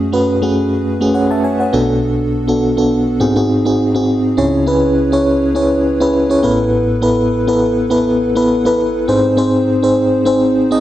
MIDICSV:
0, 0, Header, 1, 2, 480
1, 0, Start_track
1, 0, Tempo, 588235
1, 1652, Time_signature, 4, 2, 24, 8
1, 8814, End_track
2, 0, Start_track
2, 0, Title_t, "FM electric piano"
2, 0, Program_c, 0, 5
2, 0, Control_c, 0, 64, 127
2, 0, Note_on_c, 0, 42, 67
2, 0, Note_on_c, 0, 57, 85
2, 0, Note_on_c, 0, 61, 78
2, 0, Note_on_c, 0, 66, 72
2, 0, Note_on_c, 0, 68, 85
2, 100, Note_off_c, 0, 57, 0
2, 100, Note_on_c, 0, 57, 71
2, 104, Note_off_c, 0, 61, 0
2, 104, Note_on_c, 0, 61, 71
2, 106, Note_off_c, 0, 66, 0
2, 106, Note_on_c, 0, 66, 70
2, 110, Note_on_c, 0, 71, 82
2, 298, Note_off_c, 0, 57, 0
2, 300, Note_off_c, 0, 61, 0
2, 301, Note_off_c, 0, 66, 0
2, 303, Note_off_c, 0, 71, 0
2, 341, Note_on_c, 0, 57, 77
2, 344, Note_on_c, 0, 61, 70
2, 347, Note_on_c, 0, 66, 73
2, 351, Note_off_c, 0, 68, 0
2, 351, Note_on_c, 0, 68, 81
2, 733, Note_off_c, 0, 57, 0
2, 735, Note_off_c, 0, 61, 0
2, 737, Note_off_c, 0, 66, 0
2, 739, Note_off_c, 0, 68, 0
2, 821, Note_on_c, 0, 57, 76
2, 825, Note_on_c, 0, 61, 73
2, 828, Note_on_c, 0, 66, 69
2, 831, Note_on_c, 0, 68, 88
2, 933, Note_on_c, 0, 78, 59
2, 939, Note_on_c, 0, 73, 51
2, 1018, Note_off_c, 0, 57, 0
2, 1020, Note_off_c, 0, 61, 0
2, 1022, Note_off_c, 0, 66, 0
2, 1023, Note_off_c, 0, 68, 0
2, 1059, Note_off_c, 0, 78, 0
2, 1061, Note_off_c, 0, 73, 0
2, 1066, Note_on_c, 0, 81, 64
2, 1070, Note_on_c, 0, 76, 58
2, 1168, Note_off_c, 0, 81, 0
2, 1170, Note_off_c, 0, 76, 0
2, 1173, Note_on_c, 0, 80, 58
2, 1179, Note_on_c, 0, 73, 50
2, 1299, Note_off_c, 0, 73, 0
2, 1299, Note_off_c, 0, 80, 0
2, 1305, Note_on_c, 0, 78, 55
2, 1309, Note_on_c, 0, 73, 47
2, 1380, Note_off_c, 0, 42, 0
2, 1409, Note_on_c, 0, 59, 82
2, 1412, Note_on_c, 0, 62, 78
2, 1413, Note_on_c, 0, 35, 66
2, 1414, Note_on_c, 0, 47, 67
2, 1415, Note_on_c, 0, 66, 76
2, 1419, Note_on_c, 0, 69, 86
2, 1424, Control_c, 0, 64, 0
2, 1533, Note_off_c, 0, 78, 0
2, 1535, Note_off_c, 0, 73, 0
2, 1567, Control_c, 0, 64, 127
2, 1911, Note_off_c, 0, 59, 0
2, 1913, Note_off_c, 0, 62, 0
2, 1914, Note_off_c, 0, 66, 0
2, 1916, Note_off_c, 0, 69, 0
2, 2021, Note_on_c, 0, 59, 71
2, 2024, Note_on_c, 0, 62, 71
2, 2027, Note_on_c, 0, 66, 69
2, 2031, Note_on_c, 0, 69, 84
2, 2218, Note_off_c, 0, 59, 0
2, 2220, Note_off_c, 0, 62, 0
2, 2221, Note_off_c, 0, 66, 0
2, 2223, Note_off_c, 0, 69, 0
2, 2261, Note_on_c, 0, 59, 78
2, 2264, Note_on_c, 0, 62, 72
2, 2267, Note_on_c, 0, 66, 70
2, 2270, Note_on_c, 0, 69, 90
2, 2580, Note_off_c, 0, 35, 0
2, 2581, Note_off_c, 0, 47, 0
2, 2606, Note_off_c, 0, 66, 0
2, 2610, Note_on_c, 0, 60, 80
2, 2611, Note_off_c, 0, 59, 0
2, 2612, Note_off_c, 0, 62, 0
2, 2612, Note_on_c, 0, 63, 74
2, 2614, Note_on_c, 0, 44, 67
2, 2616, Note_off_c, 0, 69, 0
2, 2616, Note_on_c, 0, 66, 71
2, 2619, Note_on_c, 0, 68, 92
2, 2625, Control_c, 0, 64, 0
2, 2721, Note_off_c, 0, 60, 0
2, 2722, Note_off_c, 0, 63, 0
2, 2724, Note_off_c, 0, 66, 0
2, 2725, Note_off_c, 0, 68, 0
2, 2740, Note_on_c, 0, 60, 78
2, 2743, Note_on_c, 0, 63, 71
2, 2746, Note_on_c, 0, 66, 75
2, 2750, Note_on_c, 0, 68, 83
2, 2785, Control_c, 0, 64, 127
2, 2938, Note_off_c, 0, 60, 0
2, 2939, Note_off_c, 0, 63, 0
2, 2941, Note_off_c, 0, 66, 0
2, 2943, Note_off_c, 0, 68, 0
2, 2981, Note_on_c, 0, 60, 82
2, 2984, Note_on_c, 0, 63, 74
2, 2987, Note_on_c, 0, 66, 71
2, 2991, Note_on_c, 0, 68, 89
2, 3178, Note_off_c, 0, 60, 0
2, 3180, Note_off_c, 0, 63, 0
2, 3181, Note_off_c, 0, 66, 0
2, 3183, Note_off_c, 0, 68, 0
2, 3220, Note_on_c, 0, 60, 81
2, 3223, Note_on_c, 0, 63, 68
2, 3226, Note_on_c, 0, 66, 71
2, 3229, Note_on_c, 0, 68, 84
2, 3515, Note_off_c, 0, 60, 0
2, 3517, Note_off_c, 0, 63, 0
2, 3519, Note_off_c, 0, 66, 0
2, 3520, Note_off_c, 0, 68, 0
2, 3541, Note_off_c, 0, 44, 0
2, 3567, Note_on_c, 0, 61, 82
2, 3570, Note_on_c, 0, 64, 69
2, 3571, Note_on_c, 0, 37, 68
2, 3572, Note_on_c, 0, 49, 71
2, 3574, Note_on_c, 0, 68, 75
2, 3577, Note_on_c, 0, 73, 81
2, 3582, Control_c, 0, 64, 0
2, 3710, Control_c, 0, 64, 127
2, 3773, Note_off_c, 0, 61, 0
2, 3775, Note_off_c, 0, 64, 0
2, 3777, Note_off_c, 0, 68, 0
2, 3778, Note_off_c, 0, 73, 0
2, 3806, Note_on_c, 0, 61, 82
2, 3808, Note_on_c, 0, 64, 72
2, 3813, Note_on_c, 0, 68, 70
2, 3816, Note_on_c, 0, 71, 89
2, 4115, Note_off_c, 0, 61, 0
2, 4115, Note_off_c, 0, 64, 0
2, 4118, Note_off_c, 0, 68, 0
2, 4119, Note_off_c, 0, 71, 0
2, 4179, Note_on_c, 0, 61, 83
2, 4182, Note_on_c, 0, 64, 71
2, 4185, Note_on_c, 0, 68, 71
2, 4189, Note_on_c, 0, 73, 86
2, 4475, Note_off_c, 0, 61, 0
2, 4477, Note_off_c, 0, 64, 0
2, 4478, Note_off_c, 0, 68, 0
2, 4480, Note_off_c, 0, 73, 0
2, 4527, Note_on_c, 0, 61, 77
2, 4530, Note_on_c, 0, 64, 71
2, 4534, Note_on_c, 0, 68, 74
2, 4538, Note_on_c, 0, 73, 84
2, 4835, Note_off_c, 0, 61, 0
2, 4837, Note_off_c, 0, 64, 0
2, 4838, Note_off_c, 0, 68, 0
2, 4840, Note_off_c, 0, 73, 0
2, 4899, Note_on_c, 0, 61, 83
2, 4902, Note_on_c, 0, 64, 76
2, 4905, Note_on_c, 0, 68, 76
2, 4909, Note_on_c, 0, 71, 86
2, 5097, Note_off_c, 0, 61, 0
2, 5099, Note_off_c, 0, 64, 0
2, 5100, Note_off_c, 0, 68, 0
2, 5102, Note_off_c, 0, 71, 0
2, 5137, Note_on_c, 0, 61, 77
2, 5141, Note_on_c, 0, 64, 74
2, 5144, Note_on_c, 0, 68, 74
2, 5147, Note_on_c, 0, 73, 88
2, 5219, Note_off_c, 0, 37, 0
2, 5220, Note_off_c, 0, 49, 0
2, 5238, Note_off_c, 0, 64, 0
2, 5245, Note_on_c, 0, 59, 84
2, 5248, Note_on_c, 0, 64, 76
2, 5249, Note_off_c, 0, 61, 0
2, 5249, Note_on_c, 0, 45, 73
2, 5250, Note_on_c, 0, 33, 65
2, 5252, Note_off_c, 0, 68, 0
2, 5252, Note_on_c, 0, 69, 76
2, 5254, Note_off_c, 0, 73, 0
2, 5255, Note_on_c, 0, 71, 89
2, 5263, Control_c, 0, 64, 0
2, 5423, Control_c, 0, 64, 127
2, 5656, Note_off_c, 0, 59, 0
2, 5657, Note_off_c, 0, 64, 0
2, 5659, Note_off_c, 0, 69, 0
2, 5661, Note_off_c, 0, 71, 0
2, 5726, Note_on_c, 0, 59, 78
2, 5729, Note_on_c, 0, 64, 71
2, 5732, Note_on_c, 0, 69, 71
2, 5735, Note_on_c, 0, 71, 91
2, 6034, Note_off_c, 0, 59, 0
2, 6036, Note_off_c, 0, 64, 0
2, 6037, Note_off_c, 0, 69, 0
2, 6039, Note_off_c, 0, 71, 0
2, 6098, Note_on_c, 0, 59, 76
2, 6102, Note_on_c, 0, 64, 72
2, 6105, Note_on_c, 0, 69, 77
2, 6109, Note_on_c, 0, 71, 89
2, 6395, Note_off_c, 0, 59, 0
2, 6396, Note_off_c, 0, 64, 0
2, 6398, Note_off_c, 0, 69, 0
2, 6400, Note_off_c, 0, 71, 0
2, 6447, Note_on_c, 0, 59, 83
2, 6450, Note_on_c, 0, 64, 75
2, 6453, Note_on_c, 0, 69, 75
2, 6457, Note_on_c, 0, 71, 84
2, 6755, Note_off_c, 0, 59, 0
2, 6756, Note_off_c, 0, 64, 0
2, 6758, Note_off_c, 0, 69, 0
2, 6760, Note_off_c, 0, 71, 0
2, 6817, Note_on_c, 0, 59, 83
2, 6821, Note_on_c, 0, 64, 78
2, 6824, Note_on_c, 0, 69, 78
2, 6828, Note_on_c, 0, 71, 92
2, 7016, Note_off_c, 0, 59, 0
2, 7018, Note_off_c, 0, 64, 0
2, 7020, Note_off_c, 0, 69, 0
2, 7022, Note_off_c, 0, 71, 0
2, 7059, Note_on_c, 0, 59, 76
2, 7062, Note_on_c, 0, 64, 72
2, 7066, Note_on_c, 0, 69, 74
2, 7069, Note_on_c, 0, 71, 89
2, 7138, Note_off_c, 0, 45, 0
2, 7139, Note_off_c, 0, 33, 0
2, 7355, Note_off_c, 0, 59, 0
2, 7356, Note_off_c, 0, 64, 0
2, 7358, Note_off_c, 0, 69, 0
2, 7360, Note_off_c, 0, 71, 0
2, 7407, Note_on_c, 0, 60, 84
2, 7410, Note_on_c, 0, 63, 75
2, 7412, Note_on_c, 0, 44, 71
2, 7414, Note_on_c, 0, 68, 73
2, 7418, Note_on_c, 0, 72, 93
2, 7423, Control_c, 0, 64, 0
2, 7543, Control_c, 0, 64, 127
2, 7614, Note_off_c, 0, 60, 0
2, 7615, Note_off_c, 0, 63, 0
2, 7617, Note_off_c, 0, 68, 0
2, 7619, Note_off_c, 0, 72, 0
2, 7646, Note_on_c, 0, 60, 86
2, 7649, Note_on_c, 0, 63, 75
2, 7653, Note_on_c, 0, 68, 75
2, 7657, Note_on_c, 0, 72, 88
2, 7955, Note_off_c, 0, 60, 0
2, 7956, Note_off_c, 0, 63, 0
2, 7958, Note_off_c, 0, 68, 0
2, 7960, Note_off_c, 0, 72, 0
2, 8018, Note_on_c, 0, 60, 81
2, 8021, Note_on_c, 0, 63, 74
2, 8025, Note_on_c, 0, 68, 74
2, 8027, Note_on_c, 0, 72, 92
2, 8314, Note_off_c, 0, 60, 0
2, 8316, Note_off_c, 0, 63, 0
2, 8318, Note_off_c, 0, 68, 0
2, 8319, Note_off_c, 0, 72, 0
2, 8367, Note_on_c, 0, 60, 85
2, 8370, Note_on_c, 0, 63, 78
2, 8373, Note_on_c, 0, 68, 73
2, 8376, Note_on_c, 0, 72, 91
2, 8675, Note_off_c, 0, 60, 0
2, 8676, Note_off_c, 0, 63, 0
2, 8678, Note_off_c, 0, 68, 0
2, 8680, Note_off_c, 0, 72, 0
2, 8738, Note_on_c, 0, 60, 91
2, 8741, Note_on_c, 0, 63, 79
2, 8744, Note_on_c, 0, 68, 77
2, 8748, Note_on_c, 0, 75, 96
2, 8814, Note_off_c, 0, 44, 0
2, 8814, Note_off_c, 0, 60, 0
2, 8814, Note_off_c, 0, 63, 0
2, 8814, Note_off_c, 0, 68, 0
2, 8814, Note_off_c, 0, 75, 0
2, 8814, End_track
0, 0, End_of_file